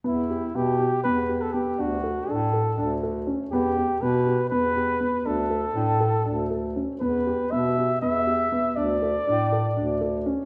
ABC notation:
X:1
M:7/8
L:1/16
Q:1/4=121
K:Edor
V:1 name="Flugelhorn"
E4 G4 B3 A G2 | F4 A6 z4 | G4 B4 B6 | A12 z2 |
B4 e4 e6 | d12 z2 |]
V:2 name="Grand piano"
B,2 G2 B,2 G2 B,2 G2 B,2 | D2 A2 D2 A2 D2 A2 C2 | B,2 G2 B,2 G2 B,2 G2 B,2 | D2 A2 D2 A2 D2 A2 C2 |
B,2 G2 B,2 G2 B,2 G2 B,2 | D2 A2 D2 A2 D2 A2 C2 |]
V:3 name="Bass clarinet" clef=bass
E,,4 B,,4 E,,6 | D,,4 A,,4 D,,6 | E,,4 B,,4 E,,6 | D,,4 A,,4 D,,6 |
E,,4 B,,4 E,,6 | D,,4 A,,4 D,,6 |]